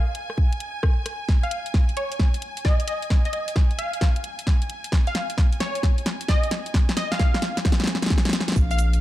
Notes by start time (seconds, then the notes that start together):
Already playing: F5 G#5
0.15 closed hi-hat
0.30 cross-stick
0.38 kick
0.53 closed hi-hat
0.60 closed hi-hat
0.83 kick, cross-stick
1.06 cross-stick, closed hi-hat
1.29 kick, snare
1.43 F5, closed hi-hat
1.51 closed hi-hat
1.66 closed hi-hat
1.74 kick, snare
1.89 closed hi-hat
1.97 C#5, closed hi-hat
2.12 closed hi-hat
2.19 kick, snare
2.34 closed hi-hat
2.42 closed hi-hat
2.57 closed hi-hat
2.65 D#5, kick, snare
2.80 closed hi-hat
2.88 D#5, closed hi-hat
3.02 closed hi-hat
3.10 kick, snare
3.25 D#5, closed hi-hat
3.33 D#5, closed hi-hat
3.48 closed hi-hat
3.56 kick, snare
3.71 closed hi-hat
3.79 F5, closed hi-hat
3.93 closed hi-hat
4.01 kick, snare
4.16 closed hi-hat
4.24 closed hi-hat
4.39 closed hi-hat
4.47 kick, snare
4.62 closed hi-hat
4.70 closed hi-hat
4.84 closed hi-hat
4.92 kick, snare
5.07 F5, closed hi-hat
5.15 snare, closed hi-hat
5.30 closed hi-hat
5.38 kick, snare
5.53 closed hi-hat
5.60 C#5, snare, closed hi-hat
5.75 closed hi-hat
5.83 kick, snare
5.98 closed hi-hat
6.06 snare, closed hi-hat
6.21 closed hi-hat
6.28 D#5, kick, snare
6.43 closed hi-hat
6.51 snare, closed hi-hat
6.66 closed hi-hat
6.74 kick, snare
6.89 snare, closed hi-hat
6.97 D#5, snare, closed hi-hat
7.12 F5, snare, closed hi-hat
7.19 kick, snare
7.34 snare, closed hi-hat
7.42 snare, closed hi-hat
7.57 snare, closed hi-hat
7.65 kick, snare
7.72 snare
7.80 snare, closed hi-hat
7.84 snare
7.87 snare, closed hi-hat
7.95 snare
8.02 snare, closed hi-hat
8.06 snare
8.10 kick, snare
8.18 snare
8.25 snare, closed hi-hat
8.29 snare
8.33 snare, closed hi-hat
8.40 snare
8.48 snare, closed hi-hat
8.52 F5, snare, shaker
8.56 A#1, kick
8.71 F5, closed hi-hat, shaker
8.79 closed hi-hat, shaker
8.93 closed hi-hat, shaker